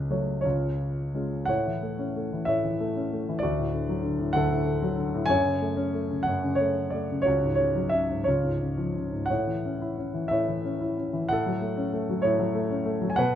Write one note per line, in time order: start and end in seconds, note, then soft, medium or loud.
0.00 0.41 C#2 medium
0.00 0.42 C#3 medium
0.00 0.77 F#4 medium
0.00 0.77 B4 medium
0.10 0.44 F#3 soft
0.10 0.44 A3 soft
0.10 0.39 C#5 soft
0.41 1.44 C#2 medium
0.41 1.14 F4 soft
0.41 1.42 C#5 medium
0.45 1.45 C#3 medium
1.15 1.47 G#3 soft
1.15 1.48 C#4 soft
1.15 1.48 F4 soft
1.45 2.47 A2 medium
1.45 2.45 C#5 medium
1.45 2.43 F#5 medium
1.67 2.31 E3 soft
1.82 2.15 A3 soft
1.99 2.95 C#4 soft
2.16 2.79 A3 soft
2.33 2.63 E3 soft
2.45 3.40 A2 medium
2.45 3.39 C#5 soft
2.45 3.44 E5 medium
2.64 3.27 E3 soft
2.80 3.11 A3 soft
2.96 3.42 C#4 soft
3.13 3.42 A3 soft
3.29 3.43 E3 medium
3.39 4.31 F#4 medium
3.39 4.36 D5 medium
3.43 4.33 D2 medium
3.59 4.18 A2 soft
3.74 4.01 D3 soft
3.89 4.81 F#3 soft
4.03 4.65 D3 soft
4.19 4.49 A2 soft
4.33 5.26 D2 medium
4.33 5.26 A4 medium
4.33 5.31 F#5 medium
4.51 5.13 A2 soft
4.67 4.96 D3 medium
4.82 5.28 F#3 medium
4.98 5.28 D3 medium
5.15 5.29 A2 medium
5.26 6.25 F#2 medium
5.26 6.23 C#5 medium
5.26 6.28 G#5 loud
5.46 6.09 C#3 soft
5.61 5.92 A3 medium
5.77 7.05 C#4 medium
5.94 6.58 A3 soft
6.11 6.42 C#3 soft
6.23 6.59 F#5 medium
6.27 7.23 F#2 medium
6.44 7.10 C#3 soft
6.55 6.92 C#5 medium
6.60 6.92 A3 soft
6.90 7.25 A3 soft
6.90 7.22 D5 medium
7.11 7.27 C#3 soft
7.22 8.22 F#4 medium
7.22 7.54 C#5 medium
7.26 8.24 C#2 medium
7.43 8.09 G#2 soft
7.55 7.90 C#3 soft
7.55 7.92 C#5 medium
7.75 8.25 F#3 soft
7.89 8.25 C#3 soft
7.89 8.26 E5 medium
8.10 8.27 G#2 soft
8.24 9.27 C#2 medium
8.24 9.28 C#5 medium
8.29 9.27 F4 soft
8.44 9.10 G#2 soft
8.61 8.94 C#3 soft
8.77 9.28 F3 soft
8.96 9.30 C#3 soft
9.12 9.29 G#2 soft
9.26 10.27 C#5 medium
9.26 10.25 F#5 medium
9.31 10.29 A2 medium
9.47 10.13 E3 soft
9.65 9.96 C#4 soft
9.82 10.79 E4 soft
9.98 10.63 C#4 soft
10.14 10.47 E3 soft
10.28 11.26 A2 medium
10.28 11.26 C#5 medium
10.28 11.31 E5 medium
10.48 11.12 E3 soft
10.64 10.96 C#4 soft
10.81 11.28 E4 soft
10.98 11.29 C#4 soft
11.13 11.29 E3 medium
11.29 12.23 A2 medium
11.29 12.27 F#5 medium
11.33 12.22 A4 medium
11.46 12.08 F#3 medium
11.61 11.92 A3 soft
11.77 12.69 C#4 medium
11.93 12.53 A3 medium
12.09 12.37 F#3 soft
12.22 13.15 A2 medium
12.22 13.13 C#5 medium
12.39 13.00 F#3 medium
12.55 12.84 A3 medium
12.71 13.17 C#4 medium
12.85 13.17 A3 medium
13.02 13.17 F#3 medium
13.10 13.17 G#5 medium
13.16 13.35 B2 medium
13.16 13.35 B4 medium
13.16 13.35 F#5 loud